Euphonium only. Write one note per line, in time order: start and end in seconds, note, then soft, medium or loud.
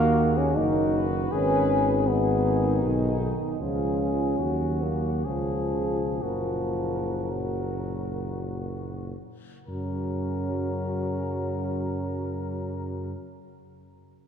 0.00 0.39 A#3 loud
0.38 0.58 C#4 medium
0.57 1.06 D#4 loud
1.33 2.09 C#4 medium
2.08 3.21 B3 medium
3.59 4.84 C#4 medium
4.82 5.26 A#3 medium
5.26 6.21 F3 medium
6.24 7.33 F3 medium
7.31 8.45 F#3 soft
9.68 13.13 F#3 medium